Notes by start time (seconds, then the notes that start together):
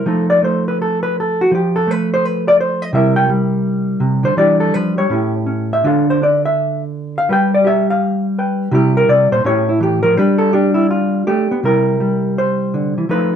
0.06 F3 A3 D#4 A4
0.30 D5
0.42 A3 C5
0.68 B4
0.82 A4
1.03 B4
1.20 A4
1.41 F#4
1.51 F3 G4
1.76 A4
1.87 A3 B4
2.14 C5
2.25 B4
2.48 D5
2.60 C5
2.82 D#5
2.93 C3 G3 E4 A#4 E5
3.16 G5
3.29 G3
4.00 C3
4.23 D3 C5
4.37 E3 G3 D4 G4 D5
4.60 A4
4.74 F3 B4
4.98 G3 C#5
5.10 A2 C#4 E4 G4
5.46 C#4
5.73 E5
5.84 D3 D4 F4 A4 F5
6.10 C5
6.22 D4 D5
6.45 E5
7.18 F5
7.29 G3 G4 B4 G5
7.54 D5
7.65 G4 E5
7.90 F5
8.39 B4 G5
8.71 C3 G3 E4 G4
8.97 A#4
9.09 C3 D5
9.32 A#2 C5
9.44 A2 C#4 E4 G4 C#5
9.69 E4
9.80 E3 G4
10.03 F3 A#4
10.17 G3 D4 G4 B4
10.38 A4
10.53 D4 G4
10.74 E4
10.91 F4
11.27 A3 G4
11.51 B3
11.63 C3 G3 E4 G4 A#4
12.00 G3
12.38 C5
12.74 D3
12.98 E3
13.09 F3 A3 D#4 F4 B4